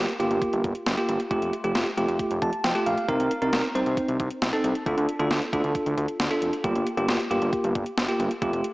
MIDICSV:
0, 0, Header, 1, 4, 480
1, 0, Start_track
1, 0, Tempo, 444444
1, 1413, Time_signature, 4, 2, 24, 8
1, 9433, End_track
2, 0, Start_track
2, 0, Title_t, "Tine electric piano"
2, 0, Program_c, 0, 4
2, 213, Note_on_c, 0, 58, 83
2, 213, Note_on_c, 0, 65, 73
2, 213, Note_on_c, 0, 67, 90
2, 772, Note_off_c, 0, 58, 0
2, 772, Note_off_c, 0, 65, 0
2, 772, Note_off_c, 0, 67, 0
2, 1053, Note_on_c, 0, 65, 70
2, 1053, Note_on_c, 0, 67, 86
2, 1054, Note_on_c, 0, 58, 78
2, 1292, Note_off_c, 0, 58, 0
2, 1292, Note_off_c, 0, 65, 0
2, 1292, Note_off_c, 0, 67, 0
2, 1412, Note_on_c, 0, 65, 78
2, 1413, Note_on_c, 0, 57, 86
2, 1413, Note_on_c, 0, 67, 91
2, 1652, Note_off_c, 0, 57, 0
2, 1652, Note_off_c, 0, 65, 0
2, 1652, Note_off_c, 0, 67, 0
2, 1773, Note_on_c, 0, 57, 76
2, 1773, Note_on_c, 0, 65, 73
2, 1773, Note_on_c, 0, 67, 87
2, 2012, Note_off_c, 0, 57, 0
2, 2012, Note_off_c, 0, 65, 0
2, 2012, Note_off_c, 0, 67, 0
2, 2133, Note_on_c, 0, 57, 80
2, 2133, Note_on_c, 0, 65, 73
2, 2133, Note_on_c, 0, 67, 87
2, 2613, Note_on_c, 0, 81, 67
2, 2691, Note_off_c, 0, 57, 0
2, 2691, Note_off_c, 0, 65, 0
2, 2691, Note_off_c, 0, 67, 0
2, 2836, Note_off_c, 0, 81, 0
2, 2852, Note_on_c, 0, 79, 73
2, 2971, Note_on_c, 0, 57, 76
2, 2971, Note_on_c, 0, 67, 84
2, 2972, Note_on_c, 0, 65, 72
2, 3075, Note_off_c, 0, 79, 0
2, 3092, Note_on_c, 0, 77, 70
2, 3211, Note_off_c, 0, 57, 0
2, 3211, Note_off_c, 0, 65, 0
2, 3211, Note_off_c, 0, 67, 0
2, 3315, Note_off_c, 0, 77, 0
2, 3332, Note_on_c, 0, 60, 84
2, 3332, Note_on_c, 0, 63, 77
2, 3332, Note_on_c, 0, 70, 92
2, 3572, Note_off_c, 0, 60, 0
2, 3572, Note_off_c, 0, 63, 0
2, 3572, Note_off_c, 0, 70, 0
2, 3691, Note_on_c, 0, 60, 77
2, 3692, Note_on_c, 0, 63, 74
2, 3692, Note_on_c, 0, 70, 91
2, 3931, Note_off_c, 0, 60, 0
2, 3932, Note_off_c, 0, 63, 0
2, 3932, Note_off_c, 0, 70, 0
2, 4051, Note_on_c, 0, 60, 80
2, 4051, Note_on_c, 0, 63, 72
2, 4051, Note_on_c, 0, 72, 90
2, 4611, Note_off_c, 0, 60, 0
2, 4611, Note_off_c, 0, 63, 0
2, 4611, Note_off_c, 0, 72, 0
2, 4892, Note_on_c, 0, 60, 80
2, 4892, Note_on_c, 0, 63, 69
2, 4892, Note_on_c, 0, 69, 85
2, 5132, Note_off_c, 0, 60, 0
2, 5132, Note_off_c, 0, 63, 0
2, 5132, Note_off_c, 0, 69, 0
2, 5252, Note_on_c, 0, 62, 87
2, 5252, Note_on_c, 0, 65, 77
2, 5252, Note_on_c, 0, 69, 91
2, 5492, Note_off_c, 0, 62, 0
2, 5492, Note_off_c, 0, 65, 0
2, 5492, Note_off_c, 0, 69, 0
2, 5611, Note_on_c, 0, 62, 80
2, 5611, Note_on_c, 0, 65, 72
2, 5611, Note_on_c, 0, 69, 87
2, 5851, Note_off_c, 0, 62, 0
2, 5851, Note_off_c, 0, 65, 0
2, 5851, Note_off_c, 0, 69, 0
2, 5972, Note_on_c, 0, 62, 79
2, 5972, Note_on_c, 0, 65, 74
2, 5972, Note_on_c, 0, 69, 90
2, 6531, Note_off_c, 0, 62, 0
2, 6531, Note_off_c, 0, 65, 0
2, 6531, Note_off_c, 0, 69, 0
2, 6812, Note_on_c, 0, 65, 70
2, 6812, Note_on_c, 0, 69, 84
2, 6813, Note_on_c, 0, 62, 76
2, 7052, Note_off_c, 0, 62, 0
2, 7052, Note_off_c, 0, 65, 0
2, 7052, Note_off_c, 0, 69, 0
2, 7173, Note_on_c, 0, 58, 86
2, 7173, Note_on_c, 0, 65, 75
2, 7173, Note_on_c, 0, 67, 93
2, 7412, Note_off_c, 0, 58, 0
2, 7412, Note_off_c, 0, 65, 0
2, 7412, Note_off_c, 0, 67, 0
2, 7532, Note_on_c, 0, 67, 90
2, 7533, Note_on_c, 0, 58, 79
2, 7533, Note_on_c, 0, 65, 74
2, 7772, Note_off_c, 0, 58, 0
2, 7772, Note_off_c, 0, 65, 0
2, 7772, Note_off_c, 0, 67, 0
2, 7892, Note_on_c, 0, 65, 77
2, 7893, Note_on_c, 0, 58, 82
2, 7893, Note_on_c, 0, 67, 90
2, 8451, Note_off_c, 0, 58, 0
2, 8451, Note_off_c, 0, 65, 0
2, 8452, Note_off_c, 0, 67, 0
2, 8732, Note_on_c, 0, 58, 78
2, 8732, Note_on_c, 0, 65, 71
2, 8732, Note_on_c, 0, 67, 86
2, 8972, Note_off_c, 0, 58, 0
2, 8972, Note_off_c, 0, 65, 0
2, 8972, Note_off_c, 0, 67, 0
2, 9092, Note_on_c, 0, 57, 84
2, 9092, Note_on_c, 0, 65, 76
2, 9093, Note_on_c, 0, 67, 91
2, 9332, Note_off_c, 0, 57, 0
2, 9332, Note_off_c, 0, 65, 0
2, 9332, Note_off_c, 0, 67, 0
2, 9433, End_track
3, 0, Start_track
3, 0, Title_t, "Analog synth bass"
3, 0, Program_c, 1, 38
3, 213, Note_on_c, 1, 31, 94
3, 312, Note_off_c, 1, 31, 0
3, 333, Note_on_c, 1, 31, 102
3, 433, Note_off_c, 1, 31, 0
3, 573, Note_on_c, 1, 31, 97
3, 673, Note_off_c, 1, 31, 0
3, 694, Note_on_c, 1, 31, 94
3, 793, Note_off_c, 1, 31, 0
3, 934, Note_on_c, 1, 31, 100
3, 1033, Note_off_c, 1, 31, 0
3, 1173, Note_on_c, 1, 31, 99
3, 1273, Note_off_c, 1, 31, 0
3, 1413, Note_on_c, 1, 29, 112
3, 1513, Note_off_c, 1, 29, 0
3, 1533, Note_on_c, 1, 29, 92
3, 1632, Note_off_c, 1, 29, 0
3, 1772, Note_on_c, 1, 29, 91
3, 1872, Note_off_c, 1, 29, 0
3, 1891, Note_on_c, 1, 29, 101
3, 1992, Note_off_c, 1, 29, 0
3, 2132, Note_on_c, 1, 29, 97
3, 2232, Note_off_c, 1, 29, 0
3, 2252, Note_on_c, 1, 29, 97
3, 2352, Note_off_c, 1, 29, 0
3, 2492, Note_on_c, 1, 29, 99
3, 2592, Note_off_c, 1, 29, 0
3, 2614, Note_on_c, 1, 29, 92
3, 2713, Note_off_c, 1, 29, 0
3, 2852, Note_on_c, 1, 29, 98
3, 2952, Note_off_c, 1, 29, 0
3, 3092, Note_on_c, 1, 34, 92
3, 3192, Note_off_c, 1, 34, 0
3, 3333, Note_on_c, 1, 36, 107
3, 3433, Note_off_c, 1, 36, 0
3, 3451, Note_on_c, 1, 36, 102
3, 3552, Note_off_c, 1, 36, 0
3, 3691, Note_on_c, 1, 36, 97
3, 3792, Note_off_c, 1, 36, 0
3, 3811, Note_on_c, 1, 36, 98
3, 3912, Note_off_c, 1, 36, 0
3, 4051, Note_on_c, 1, 36, 98
3, 4151, Note_off_c, 1, 36, 0
3, 4172, Note_on_c, 1, 36, 98
3, 4272, Note_off_c, 1, 36, 0
3, 4411, Note_on_c, 1, 36, 96
3, 4511, Note_off_c, 1, 36, 0
3, 4533, Note_on_c, 1, 36, 99
3, 4633, Note_off_c, 1, 36, 0
3, 4772, Note_on_c, 1, 36, 99
3, 4872, Note_off_c, 1, 36, 0
3, 5012, Note_on_c, 1, 36, 96
3, 5112, Note_off_c, 1, 36, 0
3, 5253, Note_on_c, 1, 38, 108
3, 5352, Note_off_c, 1, 38, 0
3, 5372, Note_on_c, 1, 38, 100
3, 5472, Note_off_c, 1, 38, 0
3, 5613, Note_on_c, 1, 38, 96
3, 5713, Note_off_c, 1, 38, 0
3, 5733, Note_on_c, 1, 38, 106
3, 5832, Note_off_c, 1, 38, 0
3, 5973, Note_on_c, 1, 38, 92
3, 6073, Note_off_c, 1, 38, 0
3, 6093, Note_on_c, 1, 38, 94
3, 6193, Note_off_c, 1, 38, 0
3, 6332, Note_on_c, 1, 38, 99
3, 6432, Note_off_c, 1, 38, 0
3, 6452, Note_on_c, 1, 38, 106
3, 6552, Note_off_c, 1, 38, 0
3, 6692, Note_on_c, 1, 38, 98
3, 6792, Note_off_c, 1, 38, 0
3, 6931, Note_on_c, 1, 29, 94
3, 7031, Note_off_c, 1, 29, 0
3, 7173, Note_on_c, 1, 31, 104
3, 7273, Note_off_c, 1, 31, 0
3, 7292, Note_on_c, 1, 31, 97
3, 7392, Note_off_c, 1, 31, 0
3, 7532, Note_on_c, 1, 31, 100
3, 7632, Note_off_c, 1, 31, 0
3, 7652, Note_on_c, 1, 31, 103
3, 7752, Note_off_c, 1, 31, 0
3, 7892, Note_on_c, 1, 31, 92
3, 7992, Note_off_c, 1, 31, 0
3, 8012, Note_on_c, 1, 31, 104
3, 8112, Note_off_c, 1, 31, 0
3, 8252, Note_on_c, 1, 31, 97
3, 8352, Note_off_c, 1, 31, 0
3, 8374, Note_on_c, 1, 31, 96
3, 8473, Note_off_c, 1, 31, 0
3, 8613, Note_on_c, 1, 31, 99
3, 8713, Note_off_c, 1, 31, 0
3, 8853, Note_on_c, 1, 31, 95
3, 8953, Note_off_c, 1, 31, 0
3, 9093, Note_on_c, 1, 29, 116
3, 9193, Note_off_c, 1, 29, 0
3, 9213, Note_on_c, 1, 29, 99
3, 9313, Note_off_c, 1, 29, 0
3, 9433, End_track
4, 0, Start_track
4, 0, Title_t, "Drums"
4, 93, Note_on_c, 9, 42, 48
4, 201, Note_off_c, 9, 42, 0
4, 216, Note_on_c, 9, 42, 72
4, 324, Note_off_c, 9, 42, 0
4, 332, Note_on_c, 9, 42, 44
4, 440, Note_off_c, 9, 42, 0
4, 450, Note_on_c, 9, 36, 87
4, 453, Note_on_c, 9, 42, 68
4, 558, Note_off_c, 9, 36, 0
4, 561, Note_off_c, 9, 42, 0
4, 572, Note_on_c, 9, 42, 46
4, 680, Note_off_c, 9, 42, 0
4, 694, Note_on_c, 9, 36, 91
4, 695, Note_on_c, 9, 42, 67
4, 802, Note_off_c, 9, 36, 0
4, 803, Note_off_c, 9, 42, 0
4, 810, Note_on_c, 9, 42, 49
4, 918, Note_off_c, 9, 42, 0
4, 933, Note_on_c, 9, 42, 78
4, 934, Note_on_c, 9, 38, 100
4, 1041, Note_off_c, 9, 42, 0
4, 1042, Note_off_c, 9, 38, 0
4, 1053, Note_on_c, 9, 42, 57
4, 1161, Note_off_c, 9, 42, 0
4, 1174, Note_on_c, 9, 42, 70
4, 1282, Note_off_c, 9, 42, 0
4, 1293, Note_on_c, 9, 42, 48
4, 1401, Note_off_c, 9, 42, 0
4, 1413, Note_on_c, 9, 36, 105
4, 1413, Note_on_c, 9, 42, 64
4, 1521, Note_off_c, 9, 36, 0
4, 1521, Note_off_c, 9, 42, 0
4, 1535, Note_on_c, 9, 42, 58
4, 1643, Note_off_c, 9, 42, 0
4, 1655, Note_on_c, 9, 42, 73
4, 1763, Note_off_c, 9, 42, 0
4, 1772, Note_on_c, 9, 42, 46
4, 1880, Note_off_c, 9, 42, 0
4, 1890, Note_on_c, 9, 42, 63
4, 1893, Note_on_c, 9, 38, 115
4, 1998, Note_off_c, 9, 42, 0
4, 2001, Note_off_c, 9, 38, 0
4, 2013, Note_on_c, 9, 42, 48
4, 2121, Note_off_c, 9, 42, 0
4, 2134, Note_on_c, 9, 42, 71
4, 2242, Note_off_c, 9, 42, 0
4, 2251, Note_on_c, 9, 42, 46
4, 2359, Note_off_c, 9, 42, 0
4, 2370, Note_on_c, 9, 36, 88
4, 2372, Note_on_c, 9, 42, 68
4, 2478, Note_off_c, 9, 36, 0
4, 2480, Note_off_c, 9, 42, 0
4, 2491, Note_on_c, 9, 42, 49
4, 2599, Note_off_c, 9, 42, 0
4, 2613, Note_on_c, 9, 36, 89
4, 2614, Note_on_c, 9, 42, 64
4, 2721, Note_off_c, 9, 36, 0
4, 2722, Note_off_c, 9, 42, 0
4, 2729, Note_on_c, 9, 42, 49
4, 2837, Note_off_c, 9, 42, 0
4, 2853, Note_on_c, 9, 42, 79
4, 2854, Note_on_c, 9, 38, 103
4, 2961, Note_off_c, 9, 42, 0
4, 2962, Note_off_c, 9, 38, 0
4, 2972, Note_on_c, 9, 42, 53
4, 3080, Note_off_c, 9, 42, 0
4, 3093, Note_on_c, 9, 42, 68
4, 3201, Note_off_c, 9, 42, 0
4, 3213, Note_on_c, 9, 42, 47
4, 3321, Note_off_c, 9, 42, 0
4, 3333, Note_on_c, 9, 36, 104
4, 3333, Note_on_c, 9, 42, 65
4, 3441, Note_off_c, 9, 36, 0
4, 3441, Note_off_c, 9, 42, 0
4, 3455, Note_on_c, 9, 42, 59
4, 3563, Note_off_c, 9, 42, 0
4, 3575, Note_on_c, 9, 42, 74
4, 3683, Note_off_c, 9, 42, 0
4, 3692, Note_on_c, 9, 42, 45
4, 3800, Note_off_c, 9, 42, 0
4, 3810, Note_on_c, 9, 42, 63
4, 3812, Note_on_c, 9, 38, 112
4, 3918, Note_off_c, 9, 42, 0
4, 3920, Note_off_c, 9, 38, 0
4, 3933, Note_on_c, 9, 42, 47
4, 4041, Note_off_c, 9, 42, 0
4, 4055, Note_on_c, 9, 42, 73
4, 4163, Note_off_c, 9, 42, 0
4, 4171, Note_on_c, 9, 42, 44
4, 4279, Note_off_c, 9, 42, 0
4, 4289, Note_on_c, 9, 36, 87
4, 4292, Note_on_c, 9, 42, 69
4, 4397, Note_off_c, 9, 36, 0
4, 4400, Note_off_c, 9, 42, 0
4, 4411, Note_on_c, 9, 42, 47
4, 4519, Note_off_c, 9, 42, 0
4, 4533, Note_on_c, 9, 36, 85
4, 4534, Note_on_c, 9, 42, 66
4, 4641, Note_off_c, 9, 36, 0
4, 4642, Note_off_c, 9, 42, 0
4, 4649, Note_on_c, 9, 42, 51
4, 4757, Note_off_c, 9, 42, 0
4, 4772, Note_on_c, 9, 42, 76
4, 4773, Note_on_c, 9, 38, 107
4, 4880, Note_off_c, 9, 42, 0
4, 4881, Note_off_c, 9, 38, 0
4, 4892, Note_on_c, 9, 42, 56
4, 5000, Note_off_c, 9, 42, 0
4, 5013, Note_on_c, 9, 42, 70
4, 5121, Note_off_c, 9, 42, 0
4, 5133, Note_on_c, 9, 42, 47
4, 5241, Note_off_c, 9, 42, 0
4, 5252, Note_on_c, 9, 42, 62
4, 5253, Note_on_c, 9, 36, 107
4, 5360, Note_off_c, 9, 42, 0
4, 5361, Note_off_c, 9, 36, 0
4, 5375, Note_on_c, 9, 42, 57
4, 5483, Note_off_c, 9, 42, 0
4, 5494, Note_on_c, 9, 42, 72
4, 5602, Note_off_c, 9, 42, 0
4, 5611, Note_on_c, 9, 42, 46
4, 5719, Note_off_c, 9, 42, 0
4, 5730, Note_on_c, 9, 42, 64
4, 5732, Note_on_c, 9, 38, 112
4, 5838, Note_off_c, 9, 42, 0
4, 5840, Note_off_c, 9, 38, 0
4, 5852, Note_on_c, 9, 42, 48
4, 5960, Note_off_c, 9, 42, 0
4, 5973, Note_on_c, 9, 36, 93
4, 5975, Note_on_c, 9, 42, 74
4, 6081, Note_off_c, 9, 36, 0
4, 6083, Note_off_c, 9, 42, 0
4, 6091, Note_on_c, 9, 42, 45
4, 6199, Note_off_c, 9, 42, 0
4, 6209, Note_on_c, 9, 36, 85
4, 6212, Note_on_c, 9, 42, 68
4, 6317, Note_off_c, 9, 36, 0
4, 6320, Note_off_c, 9, 42, 0
4, 6332, Note_on_c, 9, 42, 48
4, 6440, Note_off_c, 9, 42, 0
4, 6454, Note_on_c, 9, 42, 67
4, 6562, Note_off_c, 9, 42, 0
4, 6569, Note_on_c, 9, 42, 50
4, 6677, Note_off_c, 9, 42, 0
4, 6693, Note_on_c, 9, 42, 74
4, 6694, Note_on_c, 9, 38, 107
4, 6801, Note_off_c, 9, 42, 0
4, 6802, Note_off_c, 9, 38, 0
4, 6812, Note_on_c, 9, 42, 55
4, 6920, Note_off_c, 9, 42, 0
4, 6933, Note_on_c, 9, 42, 70
4, 7041, Note_off_c, 9, 42, 0
4, 7053, Note_on_c, 9, 42, 47
4, 7161, Note_off_c, 9, 42, 0
4, 7173, Note_on_c, 9, 36, 106
4, 7173, Note_on_c, 9, 42, 66
4, 7281, Note_off_c, 9, 36, 0
4, 7281, Note_off_c, 9, 42, 0
4, 7295, Note_on_c, 9, 42, 56
4, 7403, Note_off_c, 9, 42, 0
4, 7415, Note_on_c, 9, 42, 76
4, 7523, Note_off_c, 9, 42, 0
4, 7532, Note_on_c, 9, 42, 49
4, 7640, Note_off_c, 9, 42, 0
4, 7650, Note_on_c, 9, 42, 65
4, 7653, Note_on_c, 9, 38, 111
4, 7758, Note_off_c, 9, 42, 0
4, 7761, Note_off_c, 9, 38, 0
4, 7773, Note_on_c, 9, 42, 48
4, 7881, Note_off_c, 9, 42, 0
4, 7895, Note_on_c, 9, 42, 71
4, 8003, Note_off_c, 9, 42, 0
4, 8011, Note_on_c, 9, 42, 46
4, 8119, Note_off_c, 9, 42, 0
4, 8130, Note_on_c, 9, 36, 88
4, 8132, Note_on_c, 9, 42, 70
4, 8238, Note_off_c, 9, 36, 0
4, 8240, Note_off_c, 9, 42, 0
4, 8252, Note_on_c, 9, 42, 47
4, 8360, Note_off_c, 9, 42, 0
4, 8374, Note_on_c, 9, 36, 91
4, 8374, Note_on_c, 9, 42, 66
4, 8482, Note_off_c, 9, 36, 0
4, 8482, Note_off_c, 9, 42, 0
4, 8489, Note_on_c, 9, 42, 51
4, 8597, Note_off_c, 9, 42, 0
4, 8613, Note_on_c, 9, 42, 76
4, 8614, Note_on_c, 9, 38, 103
4, 8721, Note_off_c, 9, 42, 0
4, 8722, Note_off_c, 9, 38, 0
4, 8732, Note_on_c, 9, 42, 54
4, 8840, Note_off_c, 9, 42, 0
4, 8854, Note_on_c, 9, 42, 68
4, 8962, Note_off_c, 9, 42, 0
4, 8973, Note_on_c, 9, 42, 47
4, 9081, Note_off_c, 9, 42, 0
4, 9093, Note_on_c, 9, 36, 104
4, 9093, Note_on_c, 9, 42, 64
4, 9201, Note_off_c, 9, 36, 0
4, 9201, Note_off_c, 9, 42, 0
4, 9215, Note_on_c, 9, 42, 57
4, 9323, Note_off_c, 9, 42, 0
4, 9334, Note_on_c, 9, 42, 75
4, 9433, Note_off_c, 9, 42, 0
4, 9433, End_track
0, 0, End_of_file